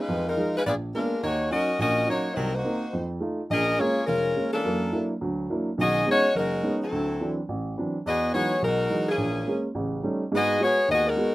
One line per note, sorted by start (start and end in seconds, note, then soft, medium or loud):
0.00 0.26 G#3 medium
0.00 0.26 D#4 medium
0.00 0.26 F4 medium
0.00 0.26 B4 medium
0.08 0.33 F2 medium
0.08 0.33 F3 medium
0.28 0.53 G#3 medium
0.28 0.53 D#4 medium
0.28 0.53 F4 medium
0.28 0.53 A#4 medium
0.37 0.55 F3 soft
0.37 0.55 G#3 soft
0.37 0.55 D#4 medium
0.56 0.61 G#3 medium
0.56 0.61 D#4 medium
0.56 0.61 F4 medium
0.56 0.61 B4 medium
0.66 0.90 A#1 medium
0.66 0.73 B3 medium
0.66 0.74 F4 medium
0.66 0.73 G#4 medium
0.66 0.74 D5 medium
0.94 1.12 G#3 soft
0.94 1.21 G#3 medium
0.94 1.12 A#3 soft
0.94 1.13 B3 soft
0.94 1.13 D4 soft
0.94 1.21 D4 medium
0.94 1.21 F4 medium
0.94 1.21 A#4 medium
1.23 1.47 D#2 medium
1.23 1.49 A#3 medium
1.23 1.49 D#4 medium
1.23 1.49 F#4 medium
1.23 1.49 C#5 medium
1.50 1.69 F#3 soft
1.50 1.69 C#4 soft
1.50 1.78 C#4 medium
1.50 1.69 D#4 medium
1.50 1.77 F#4 medium
1.50 1.78 A#4 medium
1.50 1.78 D#5 medium
1.78 2.03 A#1 medium
1.78 2.03 A#2 medium
1.78 2.06 C#4 medium
1.78 2.06 F#4 medium
1.78 2.07 A#4 medium
1.78 2.07 D#5 medium
2.07 2.26 F#3 soft
2.07 2.33 A#3 medium
2.07 2.26 C#4 soft
2.07 2.26 D#4 medium
2.07 2.33 D#4 medium
2.07 2.33 F#4 medium
2.07 2.33 C#5 medium
2.33 2.61 C2 medium
2.33 2.53 F#3 medium
2.33 2.53 C4 medium
2.33 2.53 D#4 medium
2.33 2.36 G#4 medium
2.33 2.53 A#4 medium
2.54 2.94 A#3 medium
2.54 3.11 D#4 medium
2.54 2.94 F#4 medium
2.54 3.11 C5 medium
2.64 2.83 A#3 soft
2.64 2.83 C4 soft
2.64 2.83 D#4 medium
2.93 3.18 F2 medium
3.20 3.39 A3 soft
3.20 3.40 D#4 soft
3.20 3.40 F4 soft
3.50 3.74 A#1 medium
3.50 3.77 C#4 medium
3.50 3.77 G#4 medium
3.50 3.78 A#4 medium
3.50 3.77 D#5 loud
3.78 3.97 G#3 soft
3.78 3.97 A#3 soft
3.78 4.07 A#3 medium
3.78 3.97 C#4 medium
3.78 4.05 F4 medium
3.78 4.07 G#4 medium
3.78 4.07 C#5 medium
4.06 4.32 F1 medium
4.06 4.49 G#3 medium
4.06 4.49 C#4 medium
4.06 4.49 F4 medium
4.06 4.49 A#4 medium
4.36 4.54 G#3 soft
4.36 4.54 A#3 soft
4.36 4.54 C#4 medium
4.53 5.06 E3 medium
4.53 5.06 A#3 medium
4.53 5.06 D4 medium
4.53 5.06 A4 medium
4.65 4.89 F#2 medium
4.65 4.89 A#3 medium
4.92 5.11 F#3 soft
4.92 5.11 A#3 soft
4.92 5.11 D4 soft
4.92 5.11 E4 medium
5.21 5.45 D2 medium
5.21 5.45 F#3 medium
5.50 5.68 F#3 medium
5.50 5.68 A#3 soft
5.50 5.68 D4 soft
5.50 5.68 E4 medium
5.78 6.02 B1 medium
5.78 6.02 D#3 medium
5.78 6.05 C#4 medium
5.78 6.06 F#4 medium
5.78 6.06 G#4 medium
5.78 6.06 D#5 medium
6.06 6.24 G#3 soft
6.06 6.35 G#3 medium
6.06 6.25 B3 soft
6.06 6.25 C#4 soft
6.06 6.25 D#4 medium
6.06 6.35 F#4 medium
6.10 6.35 D#4 medium
6.10 6.35 C#5 loud
6.35 6.59 F#1 medium
6.35 6.78 G#3 medium
6.35 6.78 D#4 medium
6.35 6.78 F#4 medium
6.35 6.78 A#4 medium
6.63 6.81 G#3 soft
6.63 6.81 B3 soft
6.63 6.82 C#4 soft
6.63 6.82 D#4 medium
6.83 7.35 F#3 medium
6.83 7.34 C4 medium
6.83 7.35 E4 medium
6.83 7.35 A4 medium
6.92 7.16 D2 medium
7.20 7.38 E3 soft
7.20 7.38 F#3 soft
7.20 7.38 C4 soft
7.20 7.39 D4 medium
7.49 7.73 A1 medium
7.78 7.95 E3 soft
7.78 7.95 F#3 soft
7.78 7.95 C4 soft
7.78 7.96 D4 medium
8.06 8.30 E2 medium
8.06 8.33 B3 medium
8.06 8.33 F#4 medium
8.06 8.32 G#4 medium
8.06 8.32 D#5 medium
8.34 8.52 E3 soft
8.34 8.52 F#3 soft
8.34 8.52 G#3 soft
8.34 8.60 B3 medium
8.34 8.52 D#4 medium
8.34 8.60 F#4 medium
8.34 8.60 G#4 medium
8.34 8.60 C#5 loud
8.62 8.86 B1 medium
8.62 9.08 G#3 medium
8.62 9.08 D#4 medium
8.62 9.08 F#4 medium
8.62 9.08 A#4 medium
8.90 9.08 E3 soft
8.90 9.08 F#3 soft
8.90 9.08 G#3 soft
8.90 9.08 D#4 medium
9.09 9.60 E3 medium
9.09 9.61 A#3 medium
9.09 9.61 C#4 medium
9.09 9.60 G#4 medium
9.17 9.42 A#1 medium
9.47 9.65 G#3 soft
9.47 9.65 A#3 soft
9.47 9.65 C#4 soft
9.75 9.99 A1 medium
9.75 9.99 C#3 medium
10.03 10.21 G3 medium
10.03 10.21 A3 soft
10.03 10.22 C#4 soft
10.03 10.22 D#4 medium
10.32 10.56 G#2 medium
10.32 10.56 G#3 medium
10.32 10.60 B3 medium
10.32 10.60 F#4 medium
10.32 10.60 G#4 loud
10.36 10.60 D#5 loud
10.60 10.78 G#3 soft
10.60 10.78 B3 soft
10.60 10.78 F#4 medium
10.60 10.88 F#4 medium
10.60 10.88 C#5 loud
10.64 10.88 B3 medium
10.64 10.88 G#4 medium
10.88 11.12 D#2 medium
10.88 11.06 B3 medium
10.88 11.06 F#4 medium
10.88 11.06 G#4 medium
10.88 11.05 D#5 loud
11.08 11.35 G#3 medium
11.08 11.34 D#4 medium
11.08 11.35 F#4 medium
11.08 11.35 A#4 medium
11.16 11.34 G#3 medium
11.16 11.35 B3 soft
11.16 11.35 F#4 soft